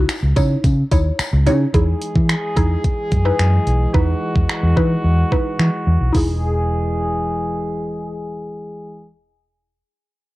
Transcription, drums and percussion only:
0, 0, Header, 1, 2, 480
1, 0, Start_track
1, 0, Key_signature, 4, "major"
1, 0, Tempo, 550459
1, 1518, Time_signature, 4, 2, 24, 8
1, 9030, End_track
2, 0, Start_track
2, 0, Title_t, "Drums"
2, 79, Note_on_c, 9, 26, 119
2, 79, Note_on_c, 9, 42, 83
2, 81, Note_on_c, 9, 54, 83
2, 166, Note_off_c, 9, 42, 0
2, 167, Note_off_c, 9, 26, 0
2, 168, Note_off_c, 9, 54, 0
2, 318, Note_on_c, 9, 42, 62
2, 319, Note_on_c, 9, 54, 51
2, 320, Note_on_c, 9, 36, 87
2, 405, Note_off_c, 9, 42, 0
2, 407, Note_off_c, 9, 36, 0
2, 407, Note_off_c, 9, 54, 0
2, 559, Note_on_c, 9, 36, 93
2, 559, Note_on_c, 9, 42, 87
2, 559, Note_on_c, 9, 54, 33
2, 646, Note_off_c, 9, 36, 0
2, 646, Note_off_c, 9, 42, 0
2, 647, Note_off_c, 9, 54, 0
2, 798, Note_on_c, 9, 42, 73
2, 800, Note_on_c, 9, 36, 87
2, 800, Note_on_c, 9, 54, 49
2, 885, Note_off_c, 9, 42, 0
2, 887, Note_off_c, 9, 36, 0
2, 887, Note_off_c, 9, 54, 0
2, 1038, Note_on_c, 9, 42, 75
2, 1039, Note_on_c, 9, 26, 115
2, 1040, Note_on_c, 9, 54, 85
2, 1125, Note_off_c, 9, 42, 0
2, 1126, Note_off_c, 9, 26, 0
2, 1127, Note_off_c, 9, 54, 0
2, 1278, Note_on_c, 9, 42, 71
2, 1279, Note_on_c, 9, 54, 43
2, 1365, Note_off_c, 9, 42, 0
2, 1366, Note_off_c, 9, 54, 0
2, 1518, Note_on_c, 9, 42, 79
2, 1519, Note_on_c, 9, 36, 111
2, 1605, Note_off_c, 9, 42, 0
2, 1606, Note_off_c, 9, 36, 0
2, 1757, Note_on_c, 9, 42, 83
2, 1844, Note_off_c, 9, 42, 0
2, 1879, Note_on_c, 9, 36, 90
2, 1966, Note_off_c, 9, 36, 0
2, 1999, Note_on_c, 9, 26, 113
2, 1999, Note_on_c, 9, 42, 81
2, 2086, Note_off_c, 9, 26, 0
2, 2086, Note_off_c, 9, 42, 0
2, 2239, Note_on_c, 9, 42, 64
2, 2240, Note_on_c, 9, 36, 87
2, 2326, Note_off_c, 9, 42, 0
2, 2328, Note_off_c, 9, 36, 0
2, 2479, Note_on_c, 9, 36, 94
2, 2479, Note_on_c, 9, 42, 84
2, 2566, Note_off_c, 9, 36, 0
2, 2567, Note_off_c, 9, 42, 0
2, 2718, Note_on_c, 9, 42, 68
2, 2720, Note_on_c, 9, 36, 85
2, 2805, Note_off_c, 9, 42, 0
2, 2807, Note_off_c, 9, 36, 0
2, 2959, Note_on_c, 9, 26, 113
2, 2959, Note_on_c, 9, 42, 72
2, 3046, Note_off_c, 9, 26, 0
2, 3046, Note_off_c, 9, 42, 0
2, 3199, Note_on_c, 9, 42, 68
2, 3286, Note_off_c, 9, 42, 0
2, 3439, Note_on_c, 9, 36, 108
2, 3526, Note_off_c, 9, 36, 0
2, 3799, Note_on_c, 9, 36, 93
2, 3886, Note_off_c, 9, 36, 0
2, 3920, Note_on_c, 9, 26, 110
2, 4007, Note_off_c, 9, 26, 0
2, 4160, Note_on_c, 9, 36, 84
2, 4248, Note_off_c, 9, 36, 0
2, 4640, Note_on_c, 9, 36, 87
2, 4727, Note_off_c, 9, 36, 0
2, 4879, Note_on_c, 9, 26, 108
2, 4966, Note_off_c, 9, 26, 0
2, 5359, Note_on_c, 9, 36, 98
2, 5359, Note_on_c, 9, 46, 83
2, 5446, Note_off_c, 9, 36, 0
2, 5446, Note_off_c, 9, 46, 0
2, 9030, End_track
0, 0, End_of_file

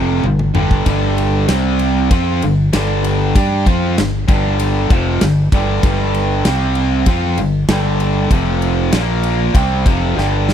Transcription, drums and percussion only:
0, 0, Header, 1, 2, 480
1, 0, Start_track
1, 0, Tempo, 620476
1, 679, Time_signature, 4, 2, 24, 8
1, 8150, End_track
2, 0, Start_track
2, 0, Title_t, "Drums"
2, 182, Note_on_c, 9, 48, 63
2, 260, Note_off_c, 9, 48, 0
2, 304, Note_on_c, 9, 47, 59
2, 382, Note_off_c, 9, 47, 0
2, 423, Note_on_c, 9, 45, 89
2, 500, Note_off_c, 9, 45, 0
2, 548, Note_on_c, 9, 36, 87
2, 626, Note_off_c, 9, 36, 0
2, 664, Note_on_c, 9, 51, 91
2, 668, Note_on_c, 9, 36, 87
2, 742, Note_off_c, 9, 51, 0
2, 745, Note_off_c, 9, 36, 0
2, 911, Note_on_c, 9, 51, 62
2, 989, Note_off_c, 9, 51, 0
2, 1149, Note_on_c, 9, 51, 90
2, 1150, Note_on_c, 9, 38, 96
2, 1226, Note_off_c, 9, 51, 0
2, 1227, Note_off_c, 9, 38, 0
2, 1387, Note_on_c, 9, 51, 70
2, 1464, Note_off_c, 9, 51, 0
2, 1631, Note_on_c, 9, 36, 105
2, 1631, Note_on_c, 9, 51, 93
2, 1708, Note_off_c, 9, 36, 0
2, 1709, Note_off_c, 9, 51, 0
2, 1874, Note_on_c, 9, 51, 74
2, 1951, Note_off_c, 9, 51, 0
2, 2114, Note_on_c, 9, 51, 97
2, 2115, Note_on_c, 9, 38, 99
2, 2191, Note_off_c, 9, 51, 0
2, 2192, Note_off_c, 9, 38, 0
2, 2354, Note_on_c, 9, 51, 76
2, 2431, Note_off_c, 9, 51, 0
2, 2596, Note_on_c, 9, 36, 108
2, 2597, Note_on_c, 9, 51, 98
2, 2673, Note_off_c, 9, 36, 0
2, 2674, Note_off_c, 9, 51, 0
2, 2835, Note_on_c, 9, 36, 91
2, 2836, Note_on_c, 9, 51, 69
2, 2912, Note_off_c, 9, 36, 0
2, 2914, Note_off_c, 9, 51, 0
2, 3079, Note_on_c, 9, 51, 81
2, 3080, Note_on_c, 9, 38, 105
2, 3157, Note_off_c, 9, 51, 0
2, 3158, Note_off_c, 9, 38, 0
2, 3315, Note_on_c, 9, 36, 116
2, 3317, Note_on_c, 9, 51, 72
2, 3392, Note_off_c, 9, 36, 0
2, 3394, Note_off_c, 9, 51, 0
2, 3554, Note_on_c, 9, 51, 89
2, 3632, Note_off_c, 9, 51, 0
2, 3794, Note_on_c, 9, 36, 114
2, 3796, Note_on_c, 9, 51, 70
2, 3871, Note_off_c, 9, 36, 0
2, 3873, Note_off_c, 9, 51, 0
2, 4032, Note_on_c, 9, 51, 89
2, 4033, Note_on_c, 9, 38, 112
2, 4109, Note_off_c, 9, 51, 0
2, 4110, Note_off_c, 9, 38, 0
2, 4272, Note_on_c, 9, 36, 105
2, 4275, Note_on_c, 9, 51, 68
2, 4350, Note_off_c, 9, 36, 0
2, 4353, Note_off_c, 9, 51, 0
2, 4511, Note_on_c, 9, 51, 88
2, 4512, Note_on_c, 9, 36, 100
2, 4589, Note_off_c, 9, 51, 0
2, 4590, Note_off_c, 9, 36, 0
2, 4753, Note_on_c, 9, 51, 62
2, 4830, Note_off_c, 9, 51, 0
2, 4990, Note_on_c, 9, 38, 111
2, 4990, Note_on_c, 9, 51, 85
2, 5067, Note_off_c, 9, 51, 0
2, 5068, Note_off_c, 9, 38, 0
2, 5223, Note_on_c, 9, 51, 64
2, 5300, Note_off_c, 9, 51, 0
2, 5462, Note_on_c, 9, 51, 87
2, 5465, Note_on_c, 9, 36, 101
2, 5540, Note_off_c, 9, 51, 0
2, 5543, Note_off_c, 9, 36, 0
2, 5705, Note_on_c, 9, 51, 68
2, 5783, Note_off_c, 9, 51, 0
2, 5945, Note_on_c, 9, 51, 89
2, 5946, Note_on_c, 9, 38, 122
2, 6023, Note_off_c, 9, 51, 0
2, 6024, Note_off_c, 9, 38, 0
2, 6188, Note_on_c, 9, 51, 65
2, 6265, Note_off_c, 9, 51, 0
2, 6426, Note_on_c, 9, 36, 91
2, 6427, Note_on_c, 9, 51, 91
2, 6504, Note_off_c, 9, 36, 0
2, 6505, Note_off_c, 9, 51, 0
2, 6668, Note_on_c, 9, 51, 64
2, 6745, Note_off_c, 9, 51, 0
2, 6905, Note_on_c, 9, 51, 95
2, 6906, Note_on_c, 9, 38, 111
2, 6982, Note_off_c, 9, 51, 0
2, 6983, Note_off_c, 9, 38, 0
2, 7143, Note_on_c, 9, 51, 70
2, 7220, Note_off_c, 9, 51, 0
2, 7385, Note_on_c, 9, 36, 104
2, 7388, Note_on_c, 9, 51, 92
2, 7462, Note_off_c, 9, 36, 0
2, 7466, Note_off_c, 9, 51, 0
2, 7627, Note_on_c, 9, 36, 112
2, 7631, Note_on_c, 9, 51, 71
2, 7704, Note_off_c, 9, 36, 0
2, 7708, Note_off_c, 9, 51, 0
2, 7875, Note_on_c, 9, 38, 56
2, 7952, Note_off_c, 9, 38, 0
2, 8113, Note_on_c, 9, 38, 83
2, 8150, Note_off_c, 9, 38, 0
2, 8150, End_track
0, 0, End_of_file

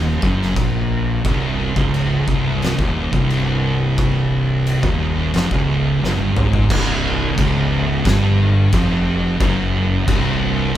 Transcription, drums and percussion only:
0, 0, Header, 1, 2, 480
1, 0, Start_track
1, 0, Tempo, 679502
1, 882, Time_signature, 4, 2, 24, 8
1, 7608, End_track
2, 0, Start_track
2, 0, Title_t, "Drums"
2, 158, Note_on_c, 9, 36, 107
2, 228, Note_off_c, 9, 36, 0
2, 297, Note_on_c, 9, 38, 31
2, 368, Note_off_c, 9, 38, 0
2, 399, Note_on_c, 9, 36, 109
2, 402, Note_on_c, 9, 49, 65
2, 469, Note_off_c, 9, 36, 0
2, 473, Note_off_c, 9, 49, 0
2, 882, Note_on_c, 9, 36, 112
2, 884, Note_on_c, 9, 49, 66
2, 952, Note_off_c, 9, 36, 0
2, 955, Note_off_c, 9, 49, 0
2, 1245, Note_on_c, 9, 36, 109
2, 1315, Note_off_c, 9, 36, 0
2, 1370, Note_on_c, 9, 49, 61
2, 1441, Note_off_c, 9, 49, 0
2, 1608, Note_on_c, 9, 36, 106
2, 1679, Note_off_c, 9, 36, 0
2, 1852, Note_on_c, 9, 49, 55
2, 1869, Note_on_c, 9, 38, 121
2, 1923, Note_off_c, 9, 49, 0
2, 1939, Note_off_c, 9, 38, 0
2, 1969, Note_on_c, 9, 36, 103
2, 2040, Note_off_c, 9, 36, 0
2, 2210, Note_on_c, 9, 36, 105
2, 2281, Note_off_c, 9, 36, 0
2, 2334, Note_on_c, 9, 49, 60
2, 2404, Note_off_c, 9, 49, 0
2, 2811, Note_on_c, 9, 36, 108
2, 2811, Note_on_c, 9, 49, 58
2, 2881, Note_off_c, 9, 49, 0
2, 2882, Note_off_c, 9, 36, 0
2, 3296, Note_on_c, 9, 49, 65
2, 3367, Note_off_c, 9, 49, 0
2, 3413, Note_on_c, 9, 36, 106
2, 3483, Note_off_c, 9, 36, 0
2, 3770, Note_on_c, 9, 49, 59
2, 3787, Note_on_c, 9, 38, 116
2, 3841, Note_off_c, 9, 49, 0
2, 3857, Note_off_c, 9, 38, 0
2, 3893, Note_on_c, 9, 36, 107
2, 3964, Note_off_c, 9, 36, 0
2, 4269, Note_on_c, 9, 38, 60
2, 4340, Note_off_c, 9, 38, 0
2, 4496, Note_on_c, 9, 45, 86
2, 4567, Note_off_c, 9, 45, 0
2, 4616, Note_on_c, 9, 43, 89
2, 4686, Note_off_c, 9, 43, 0
2, 4734, Note_on_c, 9, 36, 120
2, 4737, Note_on_c, 9, 49, 73
2, 4737, Note_on_c, 9, 57, 126
2, 4805, Note_off_c, 9, 36, 0
2, 4807, Note_off_c, 9, 49, 0
2, 4807, Note_off_c, 9, 57, 0
2, 5212, Note_on_c, 9, 36, 111
2, 5215, Note_on_c, 9, 49, 71
2, 5282, Note_off_c, 9, 36, 0
2, 5285, Note_off_c, 9, 49, 0
2, 5686, Note_on_c, 9, 49, 65
2, 5689, Note_on_c, 9, 36, 114
2, 5703, Note_on_c, 9, 38, 121
2, 5757, Note_off_c, 9, 49, 0
2, 5760, Note_off_c, 9, 36, 0
2, 5773, Note_off_c, 9, 38, 0
2, 6163, Note_on_c, 9, 49, 69
2, 6166, Note_on_c, 9, 36, 117
2, 6234, Note_off_c, 9, 49, 0
2, 6236, Note_off_c, 9, 36, 0
2, 6644, Note_on_c, 9, 36, 114
2, 6644, Note_on_c, 9, 49, 68
2, 6714, Note_off_c, 9, 36, 0
2, 6715, Note_off_c, 9, 49, 0
2, 7119, Note_on_c, 9, 36, 116
2, 7120, Note_on_c, 9, 49, 73
2, 7190, Note_off_c, 9, 36, 0
2, 7191, Note_off_c, 9, 49, 0
2, 7608, End_track
0, 0, End_of_file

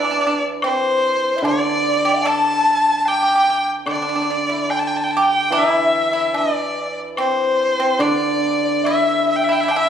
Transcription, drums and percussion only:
0, 0, Header, 1, 2, 480
1, 0, Start_track
1, 0, Tempo, 818554
1, 365, Time_signature, 4, 2, 24, 8
1, 3723, Tempo, 840336
1, 5746, End_track
2, 0, Start_track
2, 0, Title_t, "Drums"
2, 365, Note_on_c, 9, 76, 60
2, 424, Note_off_c, 9, 76, 0
2, 842, Note_on_c, 9, 77, 44
2, 901, Note_off_c, 9, 77, 0
2, 1312, Note_on_c, 9, 76, 47
2, 1371, Note_off_c, 9, 76, 0
2, 1790, Note_on_c, 9, 77, 49
2, 1849, Note_off_c, 9, 77, 0
2, 2266, Note_on_c, 9, 76, 64
2, 2325, Note_off_c, 9, 76, 0
2, 2755, Note_on_c, 9, 77, 46
2, 2814, Note_off_c, 9, 77, 0
2, 3235, Note_on_c, 9, 76, 50
2, 3294, Note_off_c, 9, 76, 0
2, 3719, Note_on_c, 9, 77, 49
2, 3777, Note_off_c, 9, 77, 0
2, 4194, Note_on_c, 9, 76, 63
2, 4251, Note_off_c, 9, 76, 0
2, 4671, Note_on_c, 9, 76, 49
2, 4728, Note_off_c, 9, 76, 0
2, 5152, Note_on_c, 9, 76, 51
2, 5209, Note_off_c, 9, 76, 0
2, 5641, Note_on_c, 9, 77, 50
2, 5698, Note_off_c, 9, 77, 0
2, 5746, End_track
0, 0, End_of_file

